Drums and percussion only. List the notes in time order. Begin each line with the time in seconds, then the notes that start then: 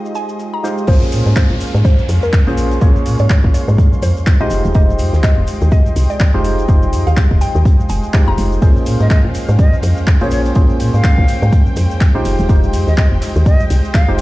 0.05 shaker
0.15 closed hi-hat, shaker
0.29 shaker
0.39 closed hi-hat, shaker
0.64 snare, closed hi-hat, shaker
0.78 shaker
0.87 kick, closed hi-hat, crash, shaker
1.02 shaker
1.12 closed hi-hat, open hi-hat, shaker
1.26 snare, shaker
1.36 kick, snare, clap, closed hi-hat, shaker
1.61 open hi-hat, shaker
1.75 closed hi-hat, shaker
1.85 kick, closed hi-hat, shaker
1.99 shaker
2.09 closed hi-hat, open hi-hat, shaker
2.23 shaker
2.33 kick, clap, closed hi-hat, shaker
2.47 closed hi-hat
2.57 open hi-hat, shaker
2.71 closed hi-hat, shaker
2.81 kick, closed hi-hat, shaker
2.96 shaker
3.05 closed hi-hat, open hi-hat, shaker
3.19 closed hi-hat, shaker
3.29 kick, snare, clap, closed hi-hat, shaker
3.44 kick
3.54 closed hi-hat, open hi-hat, shaker
3.68 shaker
3.78 kick, closed hi-hat, shaker
3.93 shaker
4.02 closed hi-hat, open hi-hat, shaker
4.17 shaker
4.26 kick, snare, clap, closed hi-hat, shaker
4.50 closed hi-hat, open hi-hat, shaker
4.64 shaker
4.74 kick, closed hi-hat, shaker
4.90 shaker
4.99 closed hi-hat, open hi-hat, shaker
5.13 snare, shaker
5.23 kick, snare, clap, closed hi-hat, shaker
5.47 open hi-hat, shaker
5.61 closed hi-hat, shaker
5.72 kick, closed hi-hat, shaker
5.86 shaker
5.96 closed hi-hat, open hi-hat, shaker
6.10 shaker
6.20 kick, snare, clap, closed hi-hat, shaker
6.44 closed hi-hat, open hi-hat, shaker
6.58 closed hi-hat, shaker
6.68 kick, closed hi-hat, shaker
6.82 shaker
6.93 closed hi-hat, open hi-hat, shaker
7.07 closed hi-hat, shaker
7.16 kick, snare, clap, closed hi-hat, shaker
7.31 kick
7.41 closed hi-hat, open hi-hat, shaker
7.55 shaker
7.65 kick, closed hi-hat, shaker
7.80 shaker
7.89 closed hi-hat, open hi-hat, shaker
8.03 shaker
8.13 kick, snare, clap, closed hi-hat, shaker
8.37 closed hi-hat, open hi-hat, shaker
8.52 shaker
8.62 kick, closed hi-hat, ride, shaker
8.76 shaker
8.86 closed hi-hat, open hi-hat, ride, shaker
9.00 snare, shaker
9.11 kick, snare, clap, closed hi-hat, ride, shaker
9.34 open hi-hat, ride, shaker
9.48 closed hi-hat, shaker
9.59 kick, closed hi-hat, ride, shaker
9.73 shaker
9.83 closed hi-hat, open hi-hat, ride, shaker
9.97 shaker
10.07 kick, clap, closed hi-hat, ride, shaker
10.21 closed hi-hat
10.31 open hi-hat, ride, shaker
10.45 closed hi-hat, shaker
10.55 kick, closed hi-hat, ride, shaker
10.69 shaker
10.80 closed hi-hat, open hi-hat, ride, shaker
10.94 closed hi-hat, shaker
11.04 kick, snare, clap, closed hi-hat, ride, shaker
11.18 kick
11.28 closed hi-hat, open hi-hat, ride, shaker
11.42 shaker
11.52 kick, closed hi-hat, ride, shaker
11.66 shaker
11.76 closed hi-hat, open hi-hat, ride, shaker
11.91 shaker
12.01 kick, snare, clap, closed hi-hat, ride, shaker
12.25 closed hi-hat, open hi-hat, ride, shaker
12.39 shaker
12.49 kick, closed hi-hat, ride, shaker
12.63 shaker
12.73 closed hi-hat, open hi-hat, ride, shaker
12.87 snare, shaker
12.98 kick, snare, clap, closed hi-hat, ride, shaker
13.21 snare, closed hi-hat, open hi-hat, ride, shaker
13.36 shaker
13.46 kick, open hi-hat, ride, shaker
13.60 closed hi-hat, shaker
13.70 closed hi-hat, open hi-hat, ride, shaker
13.84 shaker
13.94 kick, snare, clap, closed hi-hat, ride, shaker
14.18 closed hi-hat